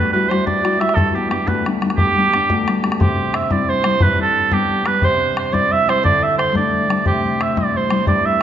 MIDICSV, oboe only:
0, 0, Header, 1, 2, 480
1, 0, Start_track
1, 0, Key_signature, 1, "major"
1, 0, Tempo, 337268
1, 1398, Time_signature, 6, 3, 24, 8
1, 11993, End_track
2, 0, Start_track
2, 0, Title_t, "Oboe"
2, 0, Program_c, 0, 68
2, 0, Note_on_c, 0, 71, 99
2, 174, Note_off_c, 0, 71, 0
2, 182, Note_on_c, 0, 71, 88
2, 411, Note_on_c, 0, 72, 76
2, 432, Note_off_c, 0, 71, 0
2, 652, Note_off_c, 0, 72, 0
2, 660, Note_on_c, 0, 74, 90
2, 1142, Note_on_c, 0, 76, 103
2, 1163, Note_off_c, 0, 74, 0
2, 1354, Note_on_c, 0, 69, 92
2, 1375, Note_off_c, 0, 76, 0
2, 1564, Note_off_c, 0, 69, 0
2, 1564, Note_on_c, 0, 69, 51
2, 1630, Note_on_c, 0, 67, 87
2, 1651, Note_off_c, 0, 69, 0
2, 1841, Note_off_c, 0, 67, 0
2, 1850, Note_on_c, 0, 67, 77
2, 2101, Note_on_c, 0, 71, 75
2, 2123, Note_off_c, 0, 67, 0
2, 2362, Note_off_c, 0, 71, 0
2, 2813, Note_on_c, 0, 67, 119
2, 3975, Note_off_c, 0, 67, 0
2, 4286, Note_on_c, 0, 67, 86
2, 4770, Note_on_c, 0, 76, 77
2, 4791, Note_off_c, 0, 67, 0
2, 5008, Note_on_c, 0, 74, 88
2, 5029, Note_off_c, 0, 76, 0
2, 5257, Note_on_c, 0, 72, 110
2, 5279, Note_off_c, 0, 74, 0
2, 5734, Note_on_c, 0, 71, 108
2, 5755, Note_off_c, 0, 72, 0
2, 5978, Note_off_c, 0, 71, 0
2, 6002, Note_on_c, 0, 69, 101
2, 6447, Note_on_c, 0, 67, 99
2, 6468, Note_off_c, 0, 69, 0
2, 6921, Note_on_c, 0, 71, 93
2, 6943, Note_off_c, 0, 67, 0
2, 7182, Note_on_c, 0, 72, 104
2, 7204, Note_off_c, 0, 71, 0
2, 7656, Note_off_c, 0, 72, 0
2, 7667, Note_on_c, 0, 72, 84
2, 7878, Note_on_c, 0, 74, 104
2, 7899, Note_off_c, 0, 72, 0
2, 8143, Note_on_c, 0, 76, 106
2, 8164, Note_off_c, 0, 74, 0
2, 8390, Note_on_c, 0, 72, 102
2, 8412, Note_off_c, 0, 76, 0
2, 8598, Note_off_c, 0, 72, 0
2, 8607, Note_on_c, 0, 74, 107
2, 8873, Note_on_c, 0, 76, 103
2, 8894, Note_off_c, 0, 74, 0
2, 9071, Note_off_c, 0, 76, 0
2, 9080, Note_on_c, 0, 72, 86
2, 9300, Note_off_c, 0, 72, 0
2, 9348, Note_on_c, 0, 74, 82
2, 10004, Note_off_c, 0, 74, 0
2, 10063, Note_on_c, 0, 67, 91
2, 10559, Note_on_c, 0, 76, 83
2, 10580, Note_off_c, 0, 67, 0
2, 10792, Note_on_c, 0, 74, 83
2, 10814, Note_off_c, 0, 76, 0
2, 11056, Note_on_c, 0, 72, 100
2, 11077, Note_off_c, 0, 74, 0
2, 11488, Note_off_c, 0, 72, 0
2, 11497, Note_on_c, 0, 74, 106
2, 11756, Note_on_c, 0, 76, 121
2, 11778, Note_off_c, 0, 74, 0
2, 11993, Note_off_c, 0, 76, 0
2, 11993, End_track
0, 0, End_of_file